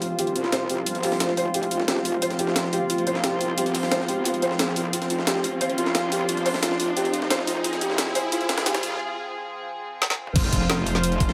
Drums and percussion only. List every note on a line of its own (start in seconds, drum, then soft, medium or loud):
0.02 closed hi-hat medium
0.02 open hi-hat medium
0.19 closed hi-hat medium
0.19 closed hi-hat loud
0.27 closed hi-hat soft
0.36 closed hi-hat medium
0.44 snare soft
0.52 snare loud
0.52 closed hi-hat medium
0.52 closed hi-hat loud
0.69 closed hi-hat medium
0.69 open hi-hat medium
0.86 closed hi-hat medium
0.86 closed hi-hat loud
0.95 closed hi-hat soft
1.03 closed hi-hat medium
1.03 open hi-hat medium
1.12 snare medium
1.20 snare loud
1.20 closed hi-hat medium
1.20 closed hi-hat loud
1.29 snare soft
1.37 closed hi-hat medium
1.37 open hi-hat medium
1.54 closed hi-hat medium
1.63 closed hi-hat soft
1.71 closed hi-hat medium
1.80 snare soft
1.88 snare loud
1.88 closed hi-hat medium
1.88 closed hi-hat loud
1.97 snare soft
2.05 closed hi-hat medium
2.05 open hi-hat medium
2.22 closed hi-hat medium
2.30 snare soft
2.30 closed hi-hat soft
2.39 closed hi-hat medium
2.47 snare soft
2.56 snare loud
2.56 closed hi-hat medium
2.64 snare soft
2.73 closed hi-hat medium
2.73 open hi-hat medium
2.90 closed hi-hat medium
2.90 closed hi-hat loud
2.98 closed hi-hat soft
3.07 closed hi-hat medium
3.15 snare soft
3.24 snare loud
3.24 closed hi-hat medium
3.41 closed hi-hat medium
3.41 open hi-hat medium
3.58 closed hi-hat medium
3.66 closed hi-hat soft
3.75 closed hi-hat medium
3.75 open hi-hat medium
3.83 snare medium
3.92 snare loud
3.92 closed hi-hat medium
4.00 snare soft
4.08 closed hi-hat medium
4.08 open hi-hat medium
4.25 closed hi-hat medium
4.34 closed hi-hat soft
4.42 closed hi-hat medium
4.51 snare soft
4.59 snare loud
4.59 closed hi-hat loud
4.59 closed hi-hat medium
4.68 snare soft
4.76 closed hi-hat medium
4.76 open hi-hat medium
4.93 closed hi-hat medium
5.02 snare soft
5.02 closed hi-hat soft
5.10 closed hi-hat medium
5.19 snare soft
5.27 snare loud
5.27 closed hi-hat medium
5.35 snare soft
5.44 closed hi-hat medium
5.44 open hi-hat medium
5.61 closed hi-hat medium
5.70 closed hi-hat soft
5.78 closed hi-hat medium
5.86 snare soft
5.95 snare loud
5.95 closed hi-hat medium
5.95 closed hi-hat loud
6.12 closed hi-hat medium
6.12 open hi-hat medium
6.29 closed hi-hat medium
6.37 closed hi-hat soft
6.46 closed hi-hat medium
6.46 open hi-hat medium
6.54 snare medium
6.63 snare loud
6.63 closed hi-hat medium
6.71 snare soft
6.80 closed hi-hat medium
6.80 open hi-hat medium
6.97 closed hi-hat medium
7.05 closed hi-hat soft
7.14 closed hi-hat medium
7.22 snare soft
7.30 snare loud
7.30 closed hi-hat loud
7.30 closed hi-hat medium
7.39 snare soft
7.47 closed hi-hat medium
7.47 open hi-hat medium
7.64 closed hi-hat medium
7.73 snare soft
7.73 closed hi-hat soft
7.81 closed hi-hat medium
7.90 snare soft
7.98 snare loud
7.98 closed hi-hat medium
8.07 snare soft
8.15 closed hi-hat medium
8.15 open hi-hat medium
8.32 closed hi-hat medium
8.41 closed hi-hat soft
8.49 snare loud
8.49 closed hi-hat medium
8.58 snare loud
8.58 closed hi-hat medium
8.66 snare loud
8.66 closed hi-hat medium
8.66 closed hi-hat loud
8.75 snare loud
8.75 closed hi-hat medium
8.83 closed hi-hat medium
8.83 open hi-hat medium
10.02 snare medium
10.10 snare medium
10.27 mid tom medium
10.36 kick loud
10.36 closed hi-hat medium
10.36 crash loud
10.44 snare soft
10.44 closed hi-hat soft
10.53 kick medium
10.53 closed hi-hat medium
10.61 snare soft
10.70 snare loud
10.70 closed hi-hat medium
10.70 closed hi-hat loud
10.78 snare soft
10.87 closed hi-hat medium
10.87 open hi-hat medium
10.95 snare soft
11.03 closed hi-hat loud
11.03 closed hi-hat medium
11.12 closed hi-hat soft
11.20 kick loud
11.20 closed hi-hat medium
11.29 snare soft